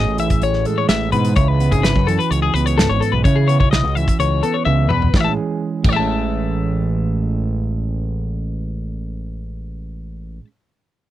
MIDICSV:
0, 0, Header, 1, 5, 480
1, 0, Start_track
1, 0, Key_signature, 3, "major"
1, 0, Tempo, 472813
1, 1387, Time_signature, 4, 2, 24, 8
1, 11271, End_track
2, 0, Start_track
2, 0, Title_t, "Clean electric guitar"
2, 0, Program_c, 0, 27
2, 0, Note_on_c, 0, 75, 68
2, 193, Note_off_c, 0, 75, 0
2, 200, Note_on_c, 0, 76, 69
2, 435, Note_off_c, 0, 76, 0
2, 440, Note_on_c, 0, 73, 71
2, 672, Note_off_c, 0, 73, 0
2, 672, Note_on_c, 0, 69, 68
2, 790, Note_off_c, 0, 69, 0
2, 790, Note_on_c, 0, 73, 58
2, 899, Note_off_c, 0, 73, 0
2, 904, Note_on_c, 0, 76, 73
2, 1136, Note_off_c, 0, 76, 0
2, 1140, Note_on_c, 0, 71, 70
2, 1379, Note_off_c, 0, 71, 0
2, 1383, Note_on_c, 0, 73, 71
2, 1505, Note_off_c, 0, 73, 0
2, 1505, Note_on_c, 0, 71, 61
2, 1741, Note_on_c, 0, 68, 51
2, 1745, Note_off_c, 0, 71, 0
2, 1862, Note_on_c, 0, 71, 71
2, 1863, Note_off_c, 0, 68, 0
2, 2101, Note_on_c, 0, 69, 73
2, 2102, Note_off_c, 0, 71, 0
2, 2221, Note_on_c, 0, 71, 62
2, 2222, Note_off_c, 0, 69, 0
2, 2342, Note_off_c, 0, 71, 0
2, 2342, Note_on_c, 0, 73, 78
2, 2456, Note_off_c, 0, 73, 0
2, 2460, Note_on_c, 0, 68, 54
2, 2576, Note_off_c, 0, 68, 0
2, 2576, Note_on_c, 0, 71, 68
2, 2699, Note_off_c, 0, 71, 0
2, 2699, Note_on_c, 0, 73, 55
2, 2819, Note_on_c, 0, 69, 74
2, 2820, Note_off_c, 0, 73, 0
2, 2938, Note_on_c, 0, 73, 62
2, 2940, Note_off_c, 0, 69, 0
2, 3051, Note_on_c, 0, 69, 67
2, 3060, Note_off_c, 0, 73, 0
2, 3168, Note_on_c, 0, 71, 61
2, 3176, Note_off_c, 0, 69, 0
2, 3287, Note_off_c, 0, 71, 0
2, 3291, Note_on_c, 0, 73, 65
2, 3407, Note_on_c, 0, 68, 57
2, 3416, Note_off_c, 0, 73, 0
2, 3530, Note_on_c, 0, 73, 64
2, 3534, Note_off_c, 0, 68, 0
2, 3642, Note_off_c, 0, 73, 0
2, 3654, Note_on_c, 0, 73, 60
2, 3764, Note_off_c, 0, 73, 0
2, 3768, Note_on_c, 0, 75, 65
2, 4013, Note_off_c, 0, 75, 0
2, 4013, Note_on_c, 0, 76, 64
2, 4256, Note_off_c, 0, 76, 0
2, 4262, Note_on_c, 0, 73, 67
2, 4496, Note_on_c, 0, 69, 65
2, 4500, Note_off_c, 0, 73, 0
2, 4607, Note_on_c, 0, 73, 52
2, 4617, Note_off_c, 0, 69, 0
2, 4721, Note_off_c, 0, 73, 0
2, 4725, Note_on_c, 0, 76, 75
2, 4963, Note_on_c, 0, 71, 66
2, 4971, Note_off_c, 0, 76, 0
2, 5245, Note_off_c, 0, 71, 0
2, 5245, Note_on_c, 0, 73, 51
2, 5284, Note_off_c, 0, 73, 0
2, 5284, Note_on_c, 0, 76, 57
2, 5325, Note_on_c, 0, 81, 56
2, 5395, Note_off_c, 0, 76, 0
2, 5409, Note_off_c, 0, 81, 0
2, 5978, Note_on_c, 0, 73, 57
2, 6016, Note_off_c, 0, 73, 0
2, 6016, Note_on_c, 0, 76, 56
2, 6056, Note_on_c, 0, 81, 63
2, 10604, Note_off_c, 0, 81, 0
2, 10625, Note_off_c, 0, 76, 0
2, 11271, End_track
3, 0, Start_track
3, 0, Title_t, "Clean electric guitar"
3, 0, Program_c, 1, 27
3, 0, Note_on_c, 1, 45, 68
3, 0, Note_on_c, 1, 52, 54
3, 0, Note_on_c, 1, 61, 46
3, 0, Note_on_c, 1, 68, 51
3, 178, Note_off_c, 1, 52, 0
3, 182, Note_on_c, 1, 52, 51
3, 674, Note_on_c, 1, 56, 49
3, 898, Note_off_c, 1, 45, 0
3, 910, Note_on_c, 1, 45, 58
3, 1139, Note_off_c, 1, 45, 0
3, 1144, Note_on_c, 1, 47, 58
3, 1384, Note_off_c, 1, 47, 0
3, 1388, Note_on_c, 1, 49, 61
3, 1391, Note_off_c, 1, 68, 0
3, 1395, Note_on_c, 1, 64, 52
3, 1624, Note_off_c, 1, 61, 0
3, 1628, Note_on_c, 1, 59, 53
3, 1750, Note_off_c, 1, 59, 0
3, 1750, Note_on_c, 1, 61, 44
3, 1863, Note_off_c, 1, 64, 0
3, 1867, Note_on_c, 1, 64, 53
3, 1991, Note_off_c, 1, 64, 0
3, 1991, Note_on_c, 1, 66, 44
3, 2022, Note_off_c, 1, 52, 0
3, 2022, Note_off_c, 1, 56, 0
3, 2105, Note_off_c, 1, 49, 0
3, 2110, Note_on_c, 1, 52, 57
3, 2599, Note_on_c, 1, 59, 53
3, 2837, Note_on_c, 1, 44, 52
3, 3279, Note_off_c, 1, 44, 0
3, 3280, Note_off_c, 1, 59, 0
3, 3302, Note_on_c, 1, 49, 55
3, 3303, Note_off_c, 1, 61, 0
3, 3304, Note_off_c, 1, 66, 0
3, 3311, Note_on_c, 1, 64, 53
3, 3547, Note_on_c, 1, 59, 47
3, 3674, Note_off_c, 1, 59, 0
3, 3674, Note_on_c, 1, 61, 41
3, 3779, Note_off_c, 1, 64, 0
3, 3791, Note_on_c, 1, 64, 47
3, 3908, Note_off_c, 1, 64, 0
3, 3908, Note_on_c, 1, 66, 46
3, 3938, Note_off_c, 1, 52, 0
3, 4020, Note_off_c, 1, 49, 0
3, 4023, Note_on_c, 1, 52, 46
3, 4504, Note_on_c, 1, 59, 48
3, 4743, Note_on_c, 1, 49, 62
3, 4971, Note_off_c, 1, 49, 0
3, 4975, Note_on_c, 1, 47, 48
3, 5191, Note_off_c, 1, 52, 0
3, 5192, Note_off_c, 1, 59, 0
3, 5213, Note_off_c, 1, 47, 0
3, 5217, Note_on_c, 1, 45, 55
3, 5222, Note_off_c, 1, 66, 0
3, 5225, Note_off_c, 1, 61, 0
3, 5266, Note_on_c, 1, 52, 55
3, 5317, Note_on_c, 1, 56, 52
3, 5367, Note_on_c, 1, 61, 49
3, 5420, Note_on_c, 1, 68, 42
3, 5450, Note_off_c, 1, 45, 0
3, 5926, Note_on_c, 1, 45, 53
3, 5956, Note_off_c, 1, 56, 0
3, 5956, Note_off_c, 1, 68, 0
3, 5978, Note_off_c, 1, 52, 0
3, 5982, Note_on_c, 1, 52, 52
3, 6032, Note_on_c, 1, 56, 50
3, 6078, Note_off_c, 1, 61, 0
3, 6082, Note_on_c, 1, 61, 53
3, 10580, Note_off_c, 1, 45, 0
3, 10608, Note_off_c, 1, 52, 0
3, 10633, Note_off_c, 1, 56, 0
3, 10658, Note_off_c, 1, 61, 0
3, 11271, End_track
4, 0, Start_track
4, 0, Title_t, "Fingered electric bass"
4, 0, Program_c, 2, 33
4, 70, Note_on_c, 2, 33, 70
4, 286, Note_off_c, 2, 33, 0
4, 428, Note_on_c, 2, 33, 76
4, 644, Note_off_c, 2, 33, 0
4, 906, Note_on_c, 2, 33, 67
4, 1146, Note_on_c, 2, 44, 93
4, 1161, Note_off_c, 2, 33, 0
4, 1362, Note_off_c, 2, 44, 0
4, 1384, Note_on_c, 2, 37, 87
4, 1709, Note_off_c, 2, 37, 0
4, 1745, Note_on_c, 2, 32, 76
4, 1961, Note_off_c, 2, 32, 0
4, 1989, Note_on_c, 2, 42, 75
4, 2202, Note_off_c, 2, 42, 0
4, 2344, Note_on_c, 2, 37, 72
4, 2560, Note_off_c, 2, 37, 0
4, 2577, Note_on_c, 2, 37, 70
4, 2903, Note_off_c, 2, 37, 0
4, 2937, Note_on_c, 2, 32, 72
4, 3047, Note_off_c, 2, 32, 0
4, 3177, Note_on_c, 2, 35, 70
4, 3287, Note_off_c, 2, 35, 0
4, 3299, Note_on_c, 2, 49, 86
4, 3623, Note_off_c, 2, 49, 0
4, 3656, Note_on_c, 2, 35, 73
4, 3873, Note_off_c, 2, 35, 0
4, 3893, Note_on_c, 2, 37, 65
4, 4112, Note_off_c, 2, 37, 0
4, 4256, Note_on_c, 2, 37, 80
4, 4473, Note_off_c, 2, 37, 0
4, 4732, Note_on_c, 2, 37, 70
4, 4971, Note_off_c, 2, 37, 0
4, 4971, Note_on_c, 2, 40, 80
4, 5190, Note_off_c, 2, 40, 0
4, 5214, Note_on_c, 2, 33, 77
4, 5349, Note_off_c, 2, 33, 0
4, 5933, Note_on_c, 2, 33, 80
4, 10543, Note_off_c, 2, 33, 0
4, 11271, End_track
5, 0, Start_track
5, 0, Title_t, "Drums"
5, 185, Note_on_c, 9, 42, 61
5, 287, Note_off_c, 9, 42, 0
5, 304, Note_on_c, 9, 42, 53
5, 308, Note_on_c, 9, 36, 65
5, 406, Note_off_c, 9, 42, 0
5, 409, Note_off_c, 9, 36, 0
5, 422, Note_on_c, 9, 42, 52
5, 524, Note_off_c, 9, 42, 0
5, 542, Note_on_c, 9, 38, 26
5, 643, Note_off_c, 9, 38, 0
5, 663, Note_on_c, 9, 42, 51
5, 764, Note_off_c, 9, 42, 0
5, 901, Note_on_c, 9, 38, 102
5, 901, Note_on_c, 9, 42, 58
5, 1002, Note_off_c, 9, 38, 0
5, 1002, Note_off_c, 9, 42, 0
5, 1141, Note_on_c, 9, 42, 53
5, 1243, Note_off_c, 9, 42, 0
5, 1265, Note_on_c, 9, 42, 55
5, 1367, Note_off_c, 9, 42, 0
5, 1381, Note_on_c, 9, 42, 46
5, 1386, Note_on_c, 9, 36, 91
5, 1482, Note_off_c, 9, 42, 0
5, 1488, Note_off_c, 9, 36, 0
5, 1628, Note_on_c, 9, 42, 54
5, 1729, Note_off_c, 9, 42, 0
5, 1746, Note_on_c, 9, 36, 71
5, 1747, Note_on_c, 9, 42, 46
5, 1847, Note_off_c, 9, 36, 0
5, 1849, Note_off_c, 9, 42, 0
5, 1872, Note_on_c, 9, 38, 86
5, 1872, Note_on_c, 9, 42, 53
5, 1973, Note_off_c, 9, 38, 0
5, 1973, Note_off_c, 9, 42, 0
5, 1986, Note_on_c, 9, 36, 70
5, 2087, Note_off_c, 9, 36, 0
5, 2116, Note_on_c, 9, 42, 53
5, 2217, Note_off_c, 9, 42, 0
5, 2237, Note_on_c, 9, 42, 48
5, 2338, Note_off_c, 9, 42, 0
5, 2352, Note_on_c, 9, 42, 57
5, 2453, Note_off_c, 9, 42, 0
5, 2595, Note_on_c, 9, 42, 52
5, 2696, Note_off_c, 9, 42, 0
5, 2709, Note_on_c, 9, 42, 51
5, 2810, Note_off_c, 9, 42, 0
5, 2834, Note_on_c, 9, 38, 97
5, 2834, Note_on_c, 9, 42, 58
5, 2935, Note_off_c, 9, 38, 0
5, 2935, Note_off_c, 9, 42, 0
5, 3070, Note_on_c, 9, 42, 54
5, 3171, Note_off_c, 9, 42, 0
5, 3300, Note_on_c, 9, 36, 93
5, 3301, Note_on_c, 9, 42, 55
5, 3402, Note_off_c, 9, 36, 0
5, 3403, Note_off_c, 9, 42, 0
5, 3544, Note_on_c, 9, 42, 55
5, 3646, Note_off_c, 9, 42, 0
5, 3658, Note_on_c, 9, 36, 69
5, 3760, Note_off_c, 9, 36, 0
5, 3784, Note_on_c, 9, 38, 95
5, 3784, Note_on_c, 9, 42, 47
5, 3885, Note_off_c, 9, 38, 0
5, 3885, Note_off_c, 9, 42, 0
5, 4028, Note_on_c, 9, 42, 54
5, 4129, Note_off_c, 9, 42, 0
5, 4139, Note_on_c, 9, 36, 75
5, 4146, Note_on_c, 9, 42, 54
5, 4241, Note_off_c, 9, 36, 0
5, 4247, Note_off_c, 9, 42, 0
5, 4265, Note_on_c, 9, 42, 56
5, 4367, Note_off_c, 9, 42, 0
5, 4501, Note_on_c, 9, 42, 54
5, 4603, Note_off_c, 9, 42, 0
5, 4740, Note_on_c, 9, 48, 51
5, 4841, Note_off_c, 9, 48, 0
5, 4978, Note_on_c, 9, 45, 75
5, 5080, Note_off_c, 9, 45, 0
5, 5098, Note_on_c, 9, 43, 69
5, 5200, Note_off_c, 9, 43, 0
5, 5216, Note_on_c, 9, 36, 91
5, 5221, Note_on_c, 9, 38, 68
5, 5318, Note_off_c, 9, 36, 0
5, 5323, Note_off_c, 9, 38, 0
5, 5931, Note_on_c, 9, 49, 77
5, 5933, Note_on_c, 9, 36, 92
5, 6033, Note_off_c, 9, 49, 0
5, 6035, Note_off_c, 9, 36, 0
5, 11271, End_track
0, 0, End_of_file